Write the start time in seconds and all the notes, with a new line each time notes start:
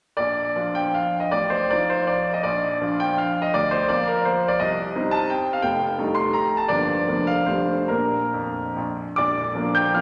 0.17 A#1 D5
0.56 F3 D4 F4
0.75 G5
0.94 F5
1.20 D#5
1.31 A1 D5
1.50 C5
1.70 F3 D#4 F4 D5
1.90 C5
2.07 D5
2.33 D#5
2.43 A#1 D5
2.81 F3 D4 F4
3.00 G5
3.18 F5
3.42 D#5
3.54 D2 D5
3.71 C5
3.89 F3 A#3 F4 D5
4.07 A#4
4.25 C5
4.48 D5
4.60 C2 D#5
4.95 G3 C4 D#4
5.11 A5
5.30 G5
5.53 F5
5.62 F1 G5
5.98 G3 A3 D#4
6.15 C6
6.33 A#5
6.57 A5
6.68 G1 F3 A#3 D4 D5
7.08 F1 F3 A#3 D4
7.27 F5
7.46 F1 G3 A3 D4 C5
7.88 A#2 A#3 D4 A#4
8.34 F2
8.76 A#1
9.16 A#0 A#1 D5 D6
9.55 F3 A#3 D4
9.75 G5 G6
9.94 F3 A#3 D4 F5 F6